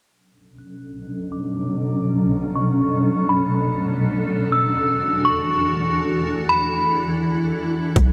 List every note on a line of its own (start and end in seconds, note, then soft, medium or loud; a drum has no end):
0.09 3.99 B2 medium
0.09 3.99 F#3 medium
0.09 3.99 C#4 medium
0.09 7.92 D4 medium
0.09 7.92 A4 medium
0.58 1.28 F#6 medium
1.32 2.02 D6 medium
2.55 3.25 C#6 medium
3.29 3.52 B5 medium
4.03 7.92 E2 medium
4.03 7.92 E3 medium
4.03 5.97 F#4 medium
4.52 5.22 E6 medium
5.25 5.95 C#6 medium
6.00 7.94 E4 medium
6.49 6.95 B5 medium
7.96 8.12 B1 loud
7.96 kick loud
7.96 closed hi-hat medium